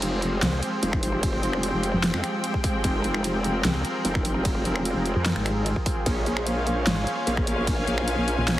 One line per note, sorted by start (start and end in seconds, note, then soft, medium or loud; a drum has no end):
0.00 0.41 F1 loud
0.00 6.02 F3 medium
0.00 7.24 G#3 medium
0.00 6.06 C4 medium
0.00 8.60 F4 medium
0.00 6.02 G4 medium
0.00 8.60 G#4 medium
0.00 0.84 A#4 medium
0.00 2.81 C5 medium
0.00 closed hi-hat medium
0.00 ride soft
0.22 closed hi-hat medium
0.42 0.61 C2 loud
0.42 snare loud
0.42 closed hi-hat medium
0.42 ride medium
0.50 6.06 G5 medium
0.63 closed hi-hat medium
0.83 1.42 F1 loud
0.83 closed hi-hat medium
0.83 ride soft
0.93 finger snap medium
0.93 kick loud
1.03 open hi-hat loud
1.23 kick loud
1.23 closed hi-hat medium
1.23 ride medium
1.43 1.72 F1 loud
1.43 closed hi-hat medium
1.53 finger snap medium
1.63 closed hi-hat medium
1.63 ride soft
1.74 1.92 F1 loud
1.83 closed hi-hat medium
1.94 2.12 F1 loud
2.04 snare loud
2.04 closed hi-hat medium
2.04 ride medium
2.14 2.22 F2 loud
2.14 finger snap medium
2.24 finger snap medium
2.24 closed hi-hat medium
2.44 closed hi-hat medium
2.44 ride soft
2.54 kick medium
2.64 kick loud
2.64 open hi-hat loud
2.84 3.63 F1 loud
2.84 6.03 A#4 medium
2.84 kick loud
2.84 closed hi-hat medium
2.84 ride medium
3.04 closed hi-hat medium
3.14 finger snap medium
3.24 closed hi-hat medium
3.24 ride soft
3.44 closed hi-hat medium
3.64 3.83 C2 loud
3.64 snare loud
3.64 closed hi-hat medium
3.64 ride medium
3.85 closed hi-hat medium
4.05 4.64 F1 medium
4.05 closed hi-hat medium
4.05 ride soft
4.15 finger snap medium
4.15 kick loud
4.25 open hi-hat medium
4.45 kick loud
4.45 closed hi-hat medium
4.45 ride medium
4.65 4.94 F1 loud
4.65 closed hi-hat medium
4.76 finger snap medium
4.85 closed hi-hat medium
4.85 ride soft
4.96 5.14 F1 loud
5.06 closed hi-hat medium
5.16 5.34 F2 loud
5.26 snare loud
5.26 closed hi-hat medium
5.26 ride medium
5.36 5.75 G#1 loud
5.36 finger snap medium
5.46 finger snap medium
5.46 closed hi-hat medium
5.66 closed hi-hat medium
5.66 ride soft
5.76 kick medium
5.86 kick loud
5.86 open hi-hat medium
6.06 6.85 A#1 loud
6.06 8.60 A#3 medium
6.06 8.60 C#4 medium
6.06 8.60 C5 medium
6.06 8.60 C#5 medium
6.06 kick loud
6.06 closed hi-hat medium
6.06 ride medium
6.26 8.60 A#4 medium
6.26 closed hi-hat medium
6.37 8.60 F5 medium
6.37 finger snap medium
6.47 closed hi-hat medium
6.47 ride soft
6.67 closed hi-hat medium
6.87 7.05 G#1 loud
6.87 8.60 G#5 medium
6.87 snare loud
6.87 closed hi-hat medium
6.87 ride medium
7.07 closed hi-hat medium
7.27 7.86 A#1 loud
7.27 closed hi-hat medium
7.27 ride soft
7.37 finger snap medium
7.37 kick loud
7.47 open hi-hat medium
7.67 kick loud
7.67 closed hi-hat medium
7.67 ride medium
7.87 8.16 A#1 loud
7.87 closed hi-hat soft
7.98 finger snap medium
8.08 closed hi-hat medium
8.08 ride soft
8.18 8.36 A#1 loud
8.28 closed hi-hat medium
8.38 8.56 A#1 loud
8.48 snare loud
8.48 closed hi-hat medium
8.48 ride medium